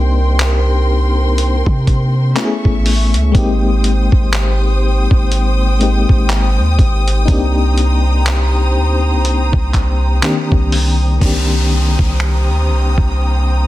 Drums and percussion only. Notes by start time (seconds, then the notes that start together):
0.40 clap, closed hi-hat
1.38 closed hi-hat
1.66 kick
1.87 kick, closed hi-hat
2.36 clap, closed hi-hat
2.65 kick
2.86 closed hi-hat, open hi-hat
3.14 closed hi-hat
3.35 kick, closed hi-hat
3.84 closed hi-hat
4.12 kick
4.33 clap, closed hi-hat
5.11 kick
5.32 closed hi-hat
5.81 closed hi-hat
6.09 kick
6.30 clap, closed hi-hat
6.79 kick, closed hi-hat
7.08 closed hi-hat
7.28 kick, closed hi-hat
7.78 closed hi-hat
8.27 clap, closed hi-hat
9.25 closed hi-hat
9.53 kick
9.74 kick, clap, closed hi-hat
10.23 clap, closed hi-hat
10.52 kick
10.72 open hi-hat
11.21 kick, crash
11.99 kick
12.20 finger snap
12.98 kick